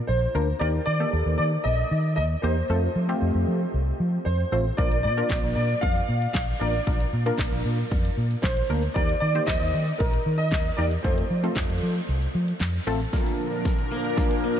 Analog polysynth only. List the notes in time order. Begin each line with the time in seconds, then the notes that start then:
0.35 A#3 D4 F4 A#4
0.61 A#3 D#4 G4 A#4
1.00 A#3 D#4 G4 A4
2.43 A#3 D#4 G4 C5
2.69 A3 C4 F4 A4
3.09 A3 C4 F4 G4
4.52 A3 C4 F4 C5
4.78 A#3 D4 F4 A#4
5.17 A#3 D4 F4 A#4
6.61 A#3 D4 F4 A#4
6.87 A#3 D4 F4 A#4
7.26 A#3 D4 F4 A#4
8.70 A#3 D4 F4 A#4
8.96 A#3 D#4 G4 A#4
9.35 A#3 D#4 G4 C5
10.78 A#3 D#4 G4 A#4
11.04 A3 C4 F4 A4
11.43 A3 C4 F4 A4
12.87 A3 C4 F4 A4
13.13 A#3 D4 F4 A#4
14.17 A#3 D4 F4 A#4